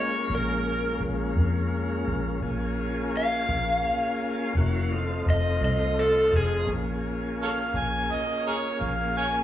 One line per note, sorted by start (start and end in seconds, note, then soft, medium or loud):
0.00 2.40 G#3 medium
0.00 2.40 A#3 medium
0.00 2.40 C#4 medium
0.00 2.40 F4 medium
0.00 0.32 C#5 medium
0.30 0.97 A#1 loud
0.35 1.02 A#4 loud
1.00 1.34 A#1 medium
1.36 2.03 F2 medium
2.08 2.40 A#1 medium
2.42 3.45 A#1 loud
2.42 4.53 A#3 medium
2.42 4.53 C#4 medium
2.42 4.54 F4 medium
2.42 4.53 G#4 medium
3.17 5.24 F5 loud
3.49 3.82 A#1 medium
4.55 5.22 F1 loud
4.55 4.92 E3 medium
4.55 4.92 A#3 medium
4.55 4.92 C#4 medium
4.55 4.92 F#4 medium
4.92 6.67 A3 medium
4.92 6.68 C4 medium
4.92 6.67 D#4 medium
4.92 6.65 F4 medium
5.26 5.59 F1 medium
5.26 5.63 D#5 medium
5.61 6.29 C2 loud
5.65 5.98 D#5 medium
5.99 6.33 A4 medium
6.32 6.65 F1 medium
6.36 6.69 G#4 medium
6.65 7.70 A#1 medium
6.65 9.44 A#3 medium
6.65 9.44 C#4 medium
6.65 9.44 F4 medium
6.65 9.44 G#4 medium
7.42 7.49 A4 medium
7.42 7.49 C#5 medium
7.42 7.78 F5 medium
7.74 8.07 A#1 medium
7.74 8.13 G#5 medium
8.11 8.46 D#5 medium
8.47 8.56 G#4 medium
8.47 8.53 A#4 medium
8.47 8.82 C#5 medium
8.80 9.44 A#1 medium
8.80 9.15 F5 medium
9.17 9.26 C#5 medium
9.17 9.26 F5 medium
9.17 9.44 G#5 medium